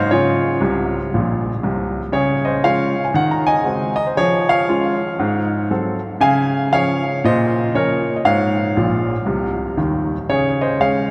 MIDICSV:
0, 0, Header, 1, 2, 480
1, 0, Start_track
1, 0, Key_signature, -5, "major"
1, 0, Tempo, 509338
1, 89, Time_signature, 4, 2, 24, 8
1, 10467, End_track
2, 0, Start_track
2, 0, Title_t, "Grand piano"
2, 0, Program_c, 0, 0
2, 0, Control_c, 0, 64, 127
2, 0, Note_on_c, 0, 44, 85
2, 0, Note_on_c, 0, 56, 38
2, 0, Note_on_c, 0, 60, 39
2, 0, Note_on_c, 0, 66, 47
2, 0, Note_on_c, 0, 72, 62
2, 0, Note_on_c, 0, 75, 74
2, 0, Note_on_c, 0, 77, 100
2, 95, Note_off_c, 0, 75, 0
2, 97, Control_c, 0, 64, 0
2, 97, Note_on_c, 0, 49, 59
2, 102, Note_on_c, 0, 73, 81
2, 104, Note_off_c, 0, 66, 0
2, 106, Note_on_c, 0, 68, 56
2, 107, Note_off_c, 0, 56, 0
2, 107, Note_off_c, 0, 77, 0
2, 109, Note_off_c, 0, 72, 0
2, 110, Note_off_c, 0, 44, 0
2, 110, Note_off_c, 0, 60, 0
2, 113, Note_on_c, 0, 65, 69
2, 244, Control_c, 0, 64, 127
2, 477, Note_off_c, 0, 49, 0
2, 487, Note_off_c, 0, 65, 0
2, 568, Note_on_c, 0, 48, 61
2, 574, Note_on_c, 0, 36, 64
2, 582, Control_c, 0, 64, 0
2, 928, Note_off_c, 0, 48, 0
2, 932, Note_off_c, 0, 36, 0
2, 1072, Note_on_c, 0, 46, 55
2, 1077, Note_on_c, 0, 34, 58
2, 1423, Note_off_c, 0, 46, 0
2, 1426, Note_off_c, 0, 34, 0
2, 1499, Note_off_c, 0, 68, 0
2, 1535, Note_off_c, 0, 73, 0
2, 1540, Note_on_c, 0, 36, 60
2, 1541, Note_on_c, 0, 48, 59
2, 1895, Note_off_c, 0, 36, 0
2, 1896, Note_off_c, 0, 48, 0
2, 2001, Note_on_c, 0, 49, 76
2, 2008, Note_on_c, 0, 73, 85
2, 2021, Note_on_c, 0, 68, 59
2, 2207, Control_c, 0, 64, 127
2, 2292, Note_off_c, 0, 68, 0
2, 2306, Note_off_c, 0, 73, 0
2, 2308, Note_on_c, 0, 75, 69
2, 2316, Note_on_c, 0, 72, 56
2, 2412, Note_off_c, 0, 49, 0
2, 2481, Note_off_c, 0, 72, 0
2, 2483, Note_on_c, 0, 61, 41
2, 2484, Note_on_c, 0, 56, 44
2, 2488, Note_on_c, 0, 65, 52
2, 2489, Note_off_c, 0, 75, 0
2, 2489, Note_on_c, 0, 77, 92
2, 2500, Control_c, 0, 64, 0
2, 2501, Note_on_c, 0, 73, 67
2, 2748, Note_off_c, 0, 61, 0
2, 2749, Note_off_c, 0, 56, 0
2, 2752, Note_off_c, 0, 65, 0
2, 2856, Note_off_c, 0, 73, 0
2, 2870, Note_on_c, 0, 80, 56
2, 2877, Note_off_c, 0, 77, 0
2, 2962, Note_on_c, 0, 51, 70
2, 2964, Note_off_c, 0, 80, 0
2, 2972, Note_on_c, 0, 78, 88
2, 3119, Note_off_c, 0, 78, 0
2, 3121, Note_on_c, 0, 82, 68
2, 3151, Control_c, 0, 64, 127
2, 3266, Note_on_c, 0, 80, 99
2, 3268, Note_off_c, 0, 82, 0
2, 3278, Note_on_c, 0, 75, 76
2, 3372, Note_off_c, 0, 51, 0
2, 3430, Note_on_c, 0, 56, 39
2, 3439, Note_on_c, 0, 66, 37
2, 3442, Note_on_c, 0, 60, 40
2, 3457, Control_c, 0, 64, 0
2, 3699, Note_off_c, 0, 56, 0
2, 3706, Note_off_c, 0, 66, 0
2, 3707, Note_off_c, 0, 60, 0
2, 3716, Note_off_c, 0, 75, 0
2, 3730, Note_on_c, 0, 75, 87
2, 3746, Note_off_c, 0, 80, 0
2, 3829, Note_off_c, 0, 75, 0
2, 3830, Note_on_c, 0, 72, 52
2, 3924, Note_off_c, 0, 72, 0
2, 3932, Note_on_c, 0, 53, 71
2, 3933, Note_on_c, 0, 73, 93
2, 3945, Note_on_c, 0, 68, 66
2, 4127, Control_c, 0, 64, 127
2, 4214, Note_off_c, 0, 68, 0
2, 4228, Note_off_c, 0, 73, 0
2, 4234, Note_on_c, 0, 77, 90
2, 4242, Note_on_c, 0, 73, 69
2, 4338, Note_off_c, 0, 53, 0
2, 4412, Note_on_c, 0, 56, 43
2, 4415, Control_c, 0, 64, 0
2, 4417, Note_on_c, 0, 61, 43
2, 4419, Note_on_c, 0, 65, 52
2, 4675, Note_off_c, 0, 56, 0
2, 4678, Note_off_c, 0, 61, 0
2, 4680, Note_off_c, 0, 65, 0
2, 4894, Note_on_c, 0, 44, 72
2, 5064, Control_c, 0, 64, 127
2, 5299, Note_off_c, 0, 44, 0
2, 5379, Note_on_c, 0, 54, 43
2, 5380, Note_on_c, 0, 60, 43
2, 5381, Control_c, 0, 64, 0
2, 5381, Note_on_c, 0, 69, 47
2, 5639, Note_off_c, 0, 54, 0
2, 5640, Note_off_c, 0, 60, 0
2, 5641, Note_off_c, 0, 69, 0
2, 5818, Note_off_c, 0, 73, 0
2, 5847, Note_on_c, 0, 49, 86
2, 5849, Note_off_c, 0, 77, 0
2, 5854, Note_on_c, 0, 80, 108
2, 5863, Note_on_c, 0, 77, 74
2, 6020, Control_c, 0, 64, 127
2, 6255, Note_off_c, 0, 49, 0
2, 6302, Note_off_c, 0, 77, 0
2, 6331, Note_off_c, 0, 80, 0
2, 6334, Control_c, 0, 64, 0
2, 6335, Note_on_c, 0, 53, 47
2, 6336, Note_on_c, 0, 61, 50
2, 6339, Note_on_c, 0, 77, 95
2, 6346, Note_on_c, 0, 68, 51
2, 6354, Note_on_c, 0, 73, 75
2, 6597, Note_off_c, 0, 53, 0
2, 6598, Note_off_c, 0, 61, 0
2, 6605, Note_off_c, 0, 68, 0
2, 6788, Note_off_c, 0, 73, 0
2, 6813, Note_off_c, 0, 77, 0
2, 6826, Note_on_c, 0, 46, 78
2, 6837, Note_on_c, 0, 75, 94
2, 6844, Note_on_c, 0, 72, 59
2, 6999, Control_c, 0, 64, 127
2, 7226, Note_off_c, 0, 46, 0
2, 7273, Note_off_c, 0, 72, 0
2, 7298, Control_c, 0, 64, 0
2, 7299, Note_on_c, 0, 53, 39
2, 7301, Note_on_c, 0, 61, 44
2, 7301, Note_on_c, 0, 68, 47
2, 7302, Note_off_c, 0, 75, 0
2, 7306, Note_on_c, 0, 73, 78
2, 7315, Note_on_c, 0, 70, 64
2, 7560, Note_off_c, 0, 53, 0
2, 7561, Note_off_c, 0, 61, 0
2, 7561, Note_off_c, 0, 68, 0
2, 7664, Note_off_c, 0, 70, 0
2, 7685, Note_off_c, 0, 73, 0
2, 7694, Note_on_c, 0, 75, 52
2, 7772, Note_on_c, 0, 44, 73
2, 7776, Note_off_c, 0, 75, 0
2, 7777, Note_on_c, 0, 77, 89
2, 7792, Note_on_c, 0, 73, 62
2, 7955, Control_c, 0, 64, 127
2, 8178, Note_off_c, 0, 44, 0
2, 8256, Control_c, 0, 64, 0
2, 8260, Note_on_c, 0, 34, 61
2, 8265, Note_on_c, 0, 46, 66
2, 8615, Note_off_c, 0, 34, 0
2, 8618, Note_off_c, 0, 46, 0
2, 8728, Note_on_c, 0, 36, 55
2, 8728, Note_on_c, 0, 48, 59
2, 8896, Control_c, 0, 64, 127
2, 9087, Note_off_c, 0, 36, 0
2, 9087, Note_off_c, 0, 48, 0
2, 9181, Note_off_c, 0, 73, 0
2, 9209, Note_on_c, 0, 39, 54
2, 9209, Note_on_c, 0, 51, 56
2, 9211, Note_off_c, 0, 77, 0
2, 9218, Control_c, 0, 64, 0
2, 9568, Note_off_c, 0, 39, 0
2, 9568, Note_off_c, 0, 51, 0
2, 9702, Note_on_c, 0, 73, 83
2, 9703, Note_on_c, 0, 49, 70
2, 9718, Note_on_c, 0, 68, 57
2, 9842, Control_c, 0, 64, 127
2, 9980, Note_off_c, 0, 68, 0
2, 9992, Note_off_c, 0, 73, 0
2, 10003, Note_on_c, 0, 75, 70
2, 10008, Note_on_c, 0, 72, 58
2, 10103, Note_off_c, 0, 49, 0
2, 10166, Note_off_c, 0, 72, 0
2, 10175, Note_off_c, 0, 75, 0
2, 10176, Note_on_c, 0, 68, 44
2, 10178, Control_c, 0, 64, 0
2, 10178, Note_on_c, 0, 56, 43
2, 10178, Note_on_c, 0, 61, 44
2, 10185, Note_on_c, 0, 77, 82
2, 10190, Note_on_c, 0, 73, 60
2, 10437, Note_off_c, 0, 68, 0
2, 10438, Note_off_c, 0, 61, 0
2, 10439, Note_off_c, 0, 56, 0
2, 10467, Note_off_c, 0, 73, 0
2, 10467, Note_off_c, 0, 77, 0
2, 10467, End_track
0, 0, End_of_file